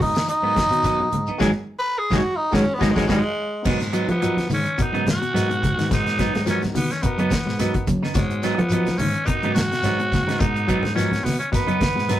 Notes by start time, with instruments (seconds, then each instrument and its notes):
Already playing: fingered electric bass G#2, reed electric piano B3 D#4 F#4 A#4
0.00 clean electric guitar C#3, tenor saxophone D#4, kick, open hi-hat, high conga, low conga, shekere
0.14 muted clean electric guitar stroke, snare, closed hi-hat, shekere
0.26 tenor saxophone D#4, muted clean electric guitar stroke, closed hi-hat, shekere
0.42 fingered electric bass G#2, clean electric guitar F#3 B3 D#4, reed electric piano B3 D#4 F#4 A#4
0.55 clean electric guitar F#3, muted clean electric guitar stroke, kick, snare, closed hi-hat, high conga, shekere
0.68 fingered electric bass B2, reed electric piano B3 D#4, shekere
0.72 clean electric guitar D#3, reed electric piano F#4 A#4, closed hi-hat
0.82 clean electric guitar F#3 B3 D#4, kick, snare, closed hi-hat, high conga, shekere
0.99 clean electric guitar F#3, muted clean electric guitar stroke, high conga
1.11 fingered electric bass G#2, muted clean electric guitar stroke, closed hi-hat, low conga, shekere
1.27 clean electric guitar B3 D#4, high conga, shekere
1.38 fingered electric bass G#1, clean electric guitar D#3 F#3 G#3 B3 D#4, reed electric piano D#4 F#4 G#4, kick, snare, high conga, shekere
1.79 tenor saxophone B4
1.99 tenor saxophone G#4
2.10 fingered electric bass G#1, clean electric guitar D#3 F#3 G#3 B3 D#4, reed electric piano D#4 F#4 G#4, kick, snare, high conga, shekere
2.17 tenor saxophone F#4
2.36 tenor saxophone D#4
2.51 fingered electric bass G#1, clean electric guitar D#3 F#3 G#3 B3 D#4, tenor saxophone C#4, reed electric piano D#4 F#4 G#4, kick, snare, high conga, shekere
2.74 tenor saxophone B3
2.79 fingered electric bass G#1, clean electric guitar D#3 F#3 G#3 B3 D#4, reed electric piano D#4 F#4 G#4, kick, snare, high conga, shekere
2.91 fingered electric bass G#1, tenor saxophone G#3, reed electric piano D#4 F#4 G#4, shekere
2.96 clean electric guitar D#3 F#3 G#3 B3 D#4, kick, snare, high conga
3.07 fingered electric bass G#1, clean electric guitar D#3 F#3 G#3 B3 D#4, reed electric piano D#4 F#4 G#4, kick, snare, high conga, shekere
3.12 tenor saxophone G#3
3.62 fingered electric bass G#2, clean electric guitar B2 F#3 B3 D#4, tenor saxophone G#3, reed electric piano B3 D#4 F#4 A#4, kick, snare, crash, high conga, low conga, shekere
3.80 muted clean electric guitar stroke, snare, closed hi-hat, shekere
3.93 clean electric guitar F#3 B3 D#4, closed hi-hat, shekere
4.08 fingered electric bass F3, tenor saxophone B3, muted clean electric guitar stroke, closed hi-hat, high conga, shekere
4.21 clean electric guitar F3 F#3 D#4, reed electric piano B3 D#4 F#4 A#4, muted clean electric guitar stroke, closed hi-hat, high conga, shekere
4.37 muted clean electric guitar stroke, snare, closed hi-hat, high conga, shekere
4.50 fingered electric bass G#2, clean electric guitar D#3, open hi-hat, high conga, low conga, shekere
4.54 tenor saxophone C#4
4.65 muted clean electric guitar stroke, closed hi-hat, shekere
4.78 clean electric guitar B2, reed electric piano B3 D#4 F#4 A#4, muted clean electric guitar stroke, muted fingered electric bass stroke, kick, closed hi-hat, shekere
4.82 tenor saxophone D#4
4.92 fingered electric bass G#2, clean electric guitar C#3 F#3 B3 D#4, closed hi-hat, shekere
5.06 muted clean electric guitar stroke, snare, closed hi-hat, high conga, low conga, shekere
5.10 tenor saxophone F#4
5.22 clean electric guitar B2, closed hi-hat, shekere
5.34 fingered electric bass G#2, clean electric guitar F#3 B3 D#4, reed electric piano B3 D#4 F#4 A#4, snare, closed hi-hat, high conga, shekere
5.50 clean electric guitar B2, muted clean electric guitar stroke, closed hi-hat, shekere
5.62 muted clean electric guitar stroke, kick, closed hi-hat, high conga, low conga, shekere
5.78 fingered electric bass G#2, clean electric guitar D#3 B3, snare, closed hi-hat, shekere
5.89 fingered electric bass G#2, clean electric guitar B2, reed electric piano B3 D#4 F#4 A#4, kick, snare, closed hi-hat, high conga, low conga, shekere
5.94 tenor saxophone D#4
6.05 muted clean electric guitar stroke, snare, closed hi-hat, shekere
6.19 clean electric guitar F#3 B3 D#4, muted clean electric guitar stroke, kick, snare, closed hi-hat, shekere
6.34 fingered electric bass G#2, muted clean electric guitar stroke, snare, closed hi-hat, high conga, shekere
6.45 clean electric guitar F3 F#3 B3 D#4, reed electric piano B3 D#4 F#4 A#4, snare, closed hi-hat, high conga, shekere
6.50 tenor saxophone C#4
6.61 muted clean electric guitar stroke, snare, closed hi-hat, high conga, shekere
6.75 fingered electric bass B2, clean electric guitar D#3, tenor saxophone B3, open hi-hat, high conga, low conga, shekere
6.90 tenor saxophone C#4, muted clean electric guitar stroke, snare, closed hi-hat, shekere
7.03 clean electric guitar B2, reed electric piano B3 D#4 F#4 A#4, tenor saxophone B3, muted fingered electric bass stroke, muted clean electric guitar stroke, kick, closed hi-hat, shekere
7.18 fingered electric bass F#2, clean electric guitar C#3 F#3 B3 D#4, closed hi-hat, shekere
7.30 kick, snare, closed hi-hat, high conga, low conga, shekere
7.45 fingered electric bass G#2, clean electric guitar B2, snare, shekere
7.58 clean electric guitar F#3 B3 D#4, reed electric piano B3 D#4 F#4 A#4, snare, closed hi-hat, high conga, shekere
7.74 clean electric guitar B2, muted clean electric guitar stroke, kick, closed hi-hat, shekere
7.87 fingered electric bass F#2, muted clean electric guitar stroke, kick, closed hi-hat, high conga, low conga, shekere
8.03 clean electric guitar C#3 B3 D#4, snare, shekere
8.13 fingered electric bass G#2, clean electric guitar B2, tenor saxophone G#3, reed electric piano B3 D#4 F#4 C#5, kick, snare, closed hi-hat, high conga, low conga, shekere
8.30 muted clean electric guitar stroke, closed hi-hat, shekere
8.43 clean electric guitar F#3 B3 D#4, snare, closed hi-hat, shekere
8.58 fingered electric bass F3, tenor saxophone B3, muted clean electric guitar stroke, closed hi-hat, high conga, shekere
8.69 clean electric guitar F3 F#3 B3, reed electric piano B3 D#4 F#4 A#4, closed hi-hat, high conga, shekere
8.73 clean electric guitar D#4
8.85 muted clean electric guitar stroke, snare, closed hi-hat, high conga, shekere
8.98 fingered electric bass G#2, clean electric guitar D#3, tenor saxophone C#4, open hi-hat, high conga, low conga, shekere
9.14 muted clean electric guitar stroke, closed hi-hat, shekere
9.25 clean electric guitar B2, reed electric piano B3 D#4 F#4 A#4, tenor saxophone D#4, muted fingered electric bass stroke, muted clean electric guitar stroke, kick, closed hi-hat, high conga, shekere
9.41 fingered electric bass G#2, clean electric guitar C#3 F#3 B3 D#4, closed hi-hat, shekere
9.54 tenor saxophone F#4, muted clean electric guitar stroke, snare, closed hi-hat, high conga, low conga, shekere
9.70 clean electric guitar B2, snare, closed hi-hat, shekere
9.81 fingered electric bass G#2, clean electric guitar F#3 B3, reed electric piano B3 D#4 F#4 C#5, snare, closed hi-hat, high conga, shekere
9.85 clean electric guitar D#4
9.99 clean electric guitar B2, muted clean electric guitar stroke, closed hi-hat, shekere
10.12 muted clean electric guitar stroke, kick, snare, closed hi-hat, high conga, low conga, shekere
10.27 fingered electric bass G#2, clean electric guitar C#3 B3 D#4, snare, closed hi-hat, shekere
10.39 fingered electric bass G#2, clean electric guitar B2, reed electric piano B3 D#4 F#4 A#4, tenor saxophone D#4, kick, closed hi-hat, shekere
10.55 muted clean electric guitar stroke, closed hi-hat, shekere
10.68 clean electric guitar F#3 B3 D#4, kick, closed hi-hat, shekere
10.82 fingered electric bass G#2, muted clean electric guitar stroke, snare, closed hi-hat, high conga, shekere
10.95 clean electric guitar F3 F#3 B3 D#4, reed electric piano B3 D#4 F#4 A#4, tenor saxophone C#4, closed hi-hat, high conga, shekere
10.99 snare
11.12 muted clean electric guitar stroke, snare, closed hi-hat, high conga, shekere
11.23 fingered electric bass B2, tenor saxophone B3, muted clean electric guitar stroke, snare, open hi-hat, high conga, low conga, shekere
11.39 tenor saxophone C#4, muted clean electric guitar stroke, closed hi-hat, shekere
11.52 clean electric guitar B2, tenor saxophone B3, reed electric piano B3 D#4 F#4 A#4, soprano saxophone B4, muted clean electric guitar stroke, muted fingered electric bass stroke, kick, snare, closed hi-hat, high conga, shekere
11.67 fingered electric bass F#2, clean electric guitar C#3 F#3 B3 D#4, closed hi-hat, shekere
11.80 muted clean electric guitar stroke, kick, snare, closed hi-hat, high conga, low conga, shekere
11.95 fingered electric bass G#2, clean electric guitar B2, snare, shekere
12.09 clean electric guitar F#3 B3 D#4, reed electric piano B3 D#4 F#4 A#4, snare, closed hi-hat, high conga, shekere